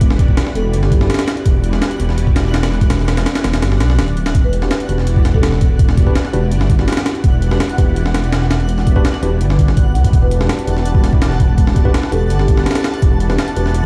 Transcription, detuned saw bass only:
0, 0, Header, 1, 2, 480
1, 0, Start_track
1, 0, Key_signature, 1, "minor"
1, 0, Tempo, 361446
1, 16, Time_signature, 4, 2, 24, 8
1, 18405, End_track
2, 0, Start_track
2, 0, Title_t, "Detuned saw bass"
2, 0, Program_c, 0, 39
2, 0, Note_on_c, 0, 28, 100
2, 476, Note_off_c, 0, 28, 0
2, 734, Note_on_c, 0, 28, 82
2, 973, Note_on_c, 0, 31, 93
2, 993, Note_off_c, 0, 28, 0
2, 1436, Note_off_c, 0, 31, 0
2, 1935, Note_on_c, 0, 28, 100
2, 2396, Note_off_c, 0, 28, 0
2, 2654, Note_on_c, 0, 28, 79
2, 3596, Note_off_c, 0, 28, 0
2, 3612, Note_on_c, 0, 28, 100
2, 4315, Note_off_c, 0, 28, 0
2, 4573, Note_on_c, 0, 28, 85
2, 4812, Note_on_c, 0, 31, 90
2, 4832, Note_off_c, 0, 28, 0
2, 5051, Note_on_c, 0, 35, 94
2, 5071, Note_off_c, 0, 31, 0
2, 5290, Note_on_c, 0, 26, 97
2, 5310, Note_off_c, 0, 35, 0
2, 5754, Note_off_c, 0, 26, 0
2, 5774, Note_on_c, 0, 28, 96
2, 6236, Note_off_c, 0, 28, 0
2, 6494, Note_on_c, 0, 28, 84
2, 7436, Note_off_c, 0, 28, 0
2, 7454, Note_on_c, 0, 28, 105
2, 8156, Note_off_c, 0, 28, 0
2, 8414, Note_on_c, 0, 28, 83
2, 8654, Note_on_c, 0, 31, 90
2, 8674, Note_off_c, 0, 28, 0
2, 9116, Note_off_c, 0, 31, 0
2, 9613, Note_on_c, 0, 28, 94
2, 10075, Note_off_c, 0, 28, 0
2, 10335, Note_on_c, 0, 28, 83
2, 11277, Note_off_c, 0, 28, 0
2, 11295, Note_on_c, 0, 28, 103
2, 11996, Note_off_c, 0, 28, 0
2, 12253, Note_on_c, 0, 28, 81
2, 12494, Note_on_c, 0, 31, 90
2, 12514, Note_off_c, 0, 28, 0
2, 13215, Note_on_c, 0, 37, 93
2, 13235, Note_off_c, 0, 31, 0
2, 13432, Note_off_c, 0, 37, 0
2, 13456, Note_on_c, 0, 28, 99
2, 13917, Note_off_c, 0, 28, 0
2, 14176, Note_on_c, 0, 28, 84
2, 15117, Note_off_c, 0, 28, 0
2, 15136, Note_on_c, 0, 28, 103
2, 15837, Note_off_c, 0, 28, 0
2, 16099, Note_on_c, 0, 28, 81
2, 16335, Note_on_c, 0, 31, 93
2, 16355, Note_off_c, 0, 28, 0
2, 16797, Note_off_c, 0, 31, 0
2, 17294, Note_on_c, 0, 28, 104
2, 17756, Note_off_c, 0, 28, 0
2, 18015, Note_on_c, 0, 28, 80
2, 18405, Note_off_c, 0, 28, 0
2, 18405, End_track
0, 0, End_of_file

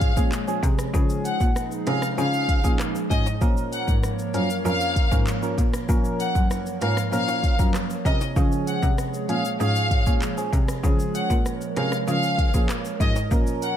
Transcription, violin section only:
0, 0, Header, 1, 2, 480
1, 0, Start_track
1, 0, Tempo, 618557
1, 730, Time_signature, 4, 2, 24, 8
1, 10685, End_track
2, 0, Start_track
2, 0, Title_t, "Violin section"
2, 0, Program_c, 0, 48
2, 0, Note_on_c, 0, 77, 114
2, 109, Note_off_c, 0, 77, 0
2, 972, Note_on_c, 0, 78, 79
2, 1045, Note_off_c, 0, 78, 0
2, 1452, Note_on_c, 0, 77, 79
2, 1598, Note_off_c, 0, 77, 0
2, 1692, Note_on_c, 0, 77, 103
2, 2030, Note_off_c, 0, 77, 0
2, 2411, Note_on_c, 0, 75, 90
2, 2484, Note_off_c, 0, 75, 0
2, 2891, Note_on_c, 0, 78, 82
2, 2964, Note_off_c, 0, 78, 0
2, 3372, Note_on_c, 0, 77, 80
2, 3518, Note_off_c, 0, 77, 0
2, 3611, Note_on_c, 0, 77, 111
2, 3949, Note_off_c, 0, 77, 0
2, 4810, Note_on_c, 0, 78, 78
2, 4884, Note_off_c, 0, 78, 0
2, 5290, Note_on_c, 0, 77, 81
2, 5437, Note_off_c, 0, 77, 0
2, 5530, Note_on_c, 0, 77, 100
2, 5869, Note_off_c, 0, 77, 0
2, 6250, Note_on_c, 0, 75, 86
2, 6323, Note_off_c, 0, 75, 0
2, 6729, Note_on_c, 0, 78, 80
2, 6803, Note_off_c, 0, 78, 0
2, 7210, Note_on_c, 0, 77, 82
2, 7357, Note_off_c, 0, 77, 0
2, 7450, Note_on_c, 0, 77, 112
2, 7788, Note_off_c, 0, 77, 0
2, 8650, Note_on_c, 0, 78, 80
2, 8724, Note_off_c, 0, 78, 0
2, 9131, Note_on_c, 0, 77, 82
2, 9278, Note_off_c, 0, 77, 0
2, 9370, Note_on_c, 0, 77, 105
2, 9709, Note_off_c, 0, 77, 0
2, 10092, Note_on_c, 0, 75, 94
2, 10165, Note_off_c, 0, 75, 0
2, 10573, Note_on_c, 0, 78, 82
2, 10646, Note_off_c, 0, 78, 0
2, 10685, End_track
0, 0, End_of_file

